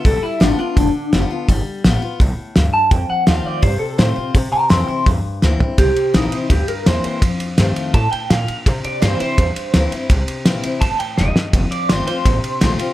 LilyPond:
<<
  \new Staff \with { instrumentName = "Clean electric guitar" } { \time 4/4 \key c \mixolydian \tempo 4 = 167 a'8 e'8 d'8 d'2~ d'8~ | d'8 r2. a''8 | g''8 fis''8 f''8 d''8 c''8 a'8 c''4 | r8 <g'' bes''>8 <g'' c'''>8 c'''8 r2 |
g'4 ees'4 g'8 bes'8 c''8 c''8 | r2 a''8 g''8 f''4 | r8 d''8 c''8 c''2 r8 | r2 a''8 g''8 ees''4~ |
ees''8 d''8 c''8 c''2 r8 | }
  \new Staff \with { instrumentName = "Steel-string acoustic guitar" } { \time 4/4 \key c \mixolydian << { r4 <g b f'>8 <b f'>8 r4 <g b f'>8 <b f'>8 | r4 <g b f'>8 <b f'>8 r2 | r4 <ees a c' f'>4 r4 <ees a c' f'>8 <c' f'>8 | r4 <e bes c' e'>8 <c' e'>8 r4 <e bes c' e'>8 <c' e'>8 |
r4 <e bes c' e'>8 <c' e'>8 r4 <e bes c' e'>4 | r4 <ees a c' f'>4 r2 | r4 <e bes c' e'>8 <c' e'>8 r4 <e bes c' e'>8 <c' e'>8 | r4 <e bes c' e'>8 <c' e'>8 r2 |
r4 <ees a c' f'>8 <c' f'>8 r4 <ees a c' f'>8 <c' f'>8 | } \\ { g2 d2 | g2 a,4 g,4 | f,2 c2 | c2 g,2 |
c2 g,2 | f,2 a,4 bes,4 | c2 g,2 | c2 a,4 g,4 |
f,2 c2 | } >> }
  \new Staff \with { instrumentName = "Upright bass" } { \clef bass \time 4/4 \key c \mixolydian b,,8 r8 g,,8 r8 e,,8 r8 f,,8 r8 | g,,8 r8 a,,8 r8 b,,8 r8 d,8 r8 | f,8 r8 ees,8 r8 g,8 r8 a,8 r8 | c8 r8 f,8 r8 e,8 r8 d,8 r8 |
c,8 r8 bes,,8 r8 d,8 r8 e,8 r8 | f,8 r8 g,8 r8 a,8 r8 bes,8 r8 | c8 r8 g,8 r8 e,8 r8 d,8 r8 | c,8 r8 bes,,8 r8 g,,8 r8 e,,8 r8 |
f,,8 r8 g,,8 r8 a,,8 r8 bes,,8 r8 | }
  \new DrumStaff \with { instrumentName = "Drums" } \drummode { \time 4/4 <hho bd>4 <hho sn>4 <hho bd>4 <hho sn>4 | <hho bd>4 <hho sn>4 <hho bd>4 <hho sn>4 | <hho bd>4 <hho sn>4 <hho bd>4 <hho sn>4 | <hho bd>4 <hho sn>4 <hho bd>4 sn8 tomfh8 |
<bd cymr>8 cymr8 <cymr sn>8 cymr8 <bd cymr>8 cymr8 <cymr sn>8 cymr8 | <bd cymr>8 cymr8 <cymr sn>8 cymr8 <bd cymr>8 cymr8 <cymr sn>8 cymr8 | <bd cymr>8 cymr8 <cymr sn>8 cymr8 <bd cymr>8 cymr8 <cymr sn>8 cymr8 | <bd cymr>8 cymr8 <cymr sn>8 cymr8 <bd cymr>8 cymr8 sn8 sn8 |
<bd cymr>8 cymr8 <cymr sn>8 cymr8 <bd cymr>8 cymr8 <cymr sn>8 cymr8 | }
>>